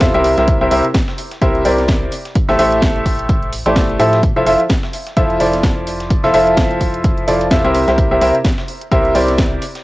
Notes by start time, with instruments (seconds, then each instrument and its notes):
0.00 fm bass F2, grand piano C3 E4 F4 A4 C5 E5, kick, snare, closed hi-hat
0.14 fm bass C2, grand piano C3 E4 G4 A#4 C5 E5, closed hi-hat
0.24 closed hi-hat, open hi-hat
0.38 fm bass C2, grand piano C3 E4 G4 A#4 C5 E5, snare, closed hi-hat
0.48 kick, closed hi-hat
0.61 fm bass C2, grand piano C3 E4 G4 A#4 C5 E5
0.71 fm bass C2, grand piano C3 E4 G4 A#4 C5 E5, closed hi-hat, open hi-hat
0.85 closed hi-hat
0.94 kick, snare, closed hi-hat
1.08 snare
1.18 closed hi-hat, open hi-hat
1.32 snare, closed hi-hat
1.42 fm bass C2, grand piano C3 E4 G4 A#4 C5 E5, kick, closed hi-hat
1.55 closed hi-hat
1.65 fm bass C2, grand piano C3 E4 G4 A#4 C5 D5, open hi-hat
1.78 snare, closed hi-hat
1.88 kick, snare, closed hi-hat
2.12 closed hi-hat, open hi-hat
2.25 snare, closed hi-hat
2.35 kick, closed hi-hat
2.48 fm bass A1, grand piano A3 E4 G4 A4 C5 E5, snare
2.59 fm bass A1, grand piano A3 E4 G4 A4 C5 E5, closed hi-hat, open hi-hat
2.72 closed hi-hat
2.82 kick, snare, closed hi-hat
2.96 closed hi-hat
3.06 kick, closed hi-hat, open hi-hat
3.19 closed hi-hat
3.29 kick, closed hi-hat
3.42 closed hi-hat
3.53 closed hi-hat, open hi-hat
3.66 fm bass A1, grand piano A3 E4 G4 A4 C5 D5, closed hi-hat
3.76 kick, snare, closed hi-hat
3.89 closed hi-hat
3.99 fm bass A2, grand piano F3 E4 G4 A4 C5 E5, closed hi-hat, open hi-hat
4.13 snare, closed hi-hat
4.23 kick, closed hi-hat
4.36 fm bass F1, grand piano F3 E4 F4 A4 C5 E5
4.46 fm bass F1, grand piano F3 E4 F4 A4 C5 E5, closed hi-hat, open hi-hat
4.60 closed hi-hat
4.69 kick, snare, closed hi-hat
4.83 snare
4.93 closed hi-hat, open hi-hat
5.06 snare, closed hi-hat
5.17 fm bass F1, grand piano F3 E4 F4 A4 C5 E5, kick, closed hi-hat
5.30 closed hi-hat
5.40 fm bass F1, grand piano F3 E4 F4 A4 C5 D5, open hi-hat
5.53 snare, closed hi-hat
5.63 kick, snare, closed hi-hat
5.87 closed hi-hat, open hi-hat
6.00 snare, closed hi-hat
6.10 kick, closed hi-hat
6.23 fm bass F1, grand piano F3 E4 F4 A4 C5 E5, snare
6.34 fm bass F1, grand piano F3 E4 F4 A4 C5 E5, closed hi-hat, open hi-hat
6.47 closed hi-hat
6.57 kick, snare, closed hi-hat
6.71 closed hi-hat
6.81 kick, closed hi-hat, open hi-hat
6.94 closed hi-hat
7.04 kick, closed hi-hat
7.17 closed hi-hat
7.28 fm bass F1, grand piano F3 E4 F4 A4 C5 D5, closed hi-hat, open hi-hat
7.41 closed hi-hat
7.51 fm bass F2, grand piano C3 E4 F4 A4 C5 E5, kick, snare, closed hi-hat
7.64 fm bass C2, grand piano C3 E4 G4 A#4 C5 E5, closed hi-hat
7.74 closed hi-hat, open hi-hat
7.88 fm bass C2, grand piano C3 E4 G4 A#4 C5 E5, snare, closed hi-hat
7.98 kick, closed hi-hat
8.11 fm bass C2, grand piano C3 E4 G4 A#4 C5 E5
8.21 fm bass C2, grand piano C3 E4 G4 A#4 C5 E5, closed hi-hat, open hi-hat
8.35 closed hi-hat
8.45 kick, snare, closed hi-hat
8.58 snare
8.68 open hi-hat
8.81 closed hi-hat
8.92 fm bass C2, grand piano C3 E4 G4 A#4 C5 E5, kick, closed hi-hat
9.05 closed hi-hat
9.15 fm bass C2, grand piano C3 E4 G4 A#4 C5 D5, open hi-hat
9.28 snare, closed hi-hat
9.38 kick, snare, closed hi-hat
9.62 closed hi-hat, open hi-hat
9.75 snare, closed hi-hat